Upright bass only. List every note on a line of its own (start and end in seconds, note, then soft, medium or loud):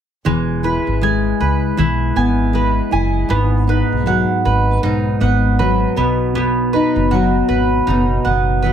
0.26 0.76 E1 medium
0.87 1.31 G#1 medium
1.40 1.72 C#2 medium
1.78 2.09 B1 medium
2.16 2.79 G#1 medium
2.93 3.24 F#1 medium
3.30 3.80 G#1 medium
3.92 4.23 B1 medium
4.45 4.76 G#1 medium
4.83 5.14 B1 medium
5.21 5.83 G#1 medium
5.97 6.78 B1 medium
6.96 7.40 F#1 medium
7.49 7.81 G#1 medium
7.88 8.19 F#1 medium
8.25 8.73 F#1 medium